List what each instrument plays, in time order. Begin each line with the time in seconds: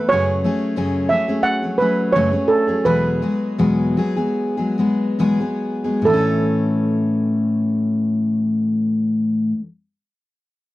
Already playing: steel-string acoustic guitar A3 B3 A4, steel pan B4
0.09 steel-string acoustic guitar F#2 C#3 F#3 A3 C#4, steel pan C#5
0.13 steel-string acoustic guitar G#4
0.44 steel-string acoustic guitar F#3 A3 C#4 G#4
0.76 steel-string acoustic guitar F#2 C#3 F#3 A3 C#4 G#4
1.09 steel-string acoustic guitar F#3 A3 C#4 G#4, steel pan E5
1.28 steel-string acoustic guitar F#3 A3 C#4 G#4
1.43 steel pan F#5
1.62 steel-string acoustic guitar F#3 A3 C#4 G#4
1.78 steel-string acoustic guitar F#3 A3 C#4 G#4, steel pan B4
2.12 steel-string acoustic guitar F#2 C#3 F#3 A3 G#4, steel pan C#5
2.17 steel-string acoustic guitar C#4
2.32 steel-string acoustic guitar F#3 A3 C#4 G#4
2.48 steel pan A4
2.67 steel-string acoustic guitar F#3 A3 C#4 G#4
2.85 steel-string acoustic guitar E2 B2 F#3 G#3 B3 G#4, steel pan B4
3.22 steel-string acoustic guitar F#3 G#3 B3 G#4
3.58 steel-string acoustic guitar E2 B2 F#3 G#3 B3 G#4
3.97 steel-string acoustic guitar F#3 G#3 B3 G#4
4.16 steel-string acoustic guitar F#3 G#3 B3 G#4
4.57 steel-string acoustic guitar F#3 G#3 B3 G#4
4.78 steel-string acoustic guitar F#3 G#3 B3 G#4
5.19 steel-string acoustic guitar E2 B2 F#3 G#3 B3 G#4
5.40 steel-string acoustic guitar F#3 G#3 B3 G#4
5.84 steel-string acoustic guitar F#3 G#3 B3 G#4
6.02 steel-string acoustic guitar A2, steel pan A4
6.06 steel-string acoustic guitar E3 A3
6.13 steel-string acoustic guitar C#4 A4